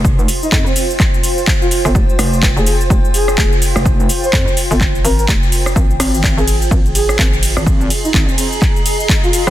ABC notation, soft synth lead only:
X:1
M:4/4
L:1/16
Q:"Swing 16ths" 1/4=126
K:Fm
V:1 name="Soft synth lead"
z3 E E C C z6 F F z | z4 z A A z3 A3 z3 | z3 c3 z4 B B z4 | z4 z A A z3 A3 z3 |
z3 E E C C z6 F F z |]